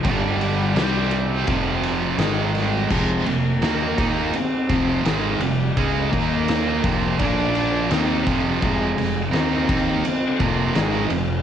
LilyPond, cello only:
\new Staff \with { instrumentName = "Cello" } { \clef bass \time 4/4 \key f \dorian \tempo 4 = 84 g8 g2~ g8 r8 g8 | aes8 bes4. c'4 aes8 g8 | aes8 bes4. d'4 c'8. r16 | aes4 c'4 c'8 bes8 aes8 f8 | }